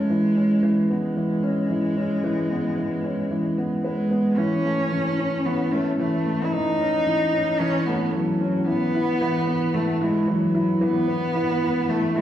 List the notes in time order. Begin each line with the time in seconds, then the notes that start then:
Already playing: E3 G#3 A3 C#4
0.10 E3
0.36 C#4
0.63 E3
0.90 G#3 B3
1.17 E3
1.43 C#4
1.70 E3
1.97 C#4
2.24 E3
2.51 B3
2.78 E3
3.04 C#4
3.31 E3
3.58 B3
3.84 G#3 B4
4.11 B3
4.37 E3 C#4
4.65 A3
4.92 E3
5.19 C#4
5.46 E3 B3
5.72 A3 C#4
5.99 E3 A3
6.27 A3
6.44 E4
6.52 E3 D#4
6.80 C#4
7.07 E3
7.33 C#4
7.60 E3 C#4
7.86 A3 B3
8.13 E3 F#3
8.41 C#4
8.67 E3 B3
8.95 E4
9.21 E3
9.47 B3
9.74 E3 A3
10.01 G#3 E4
10.28 E3 F#3
10.55 E4
10.81 E3 B3
11.08 B3
11.35 E3
11.62 E4
11.88 E3 A3
12.15 G#3 E4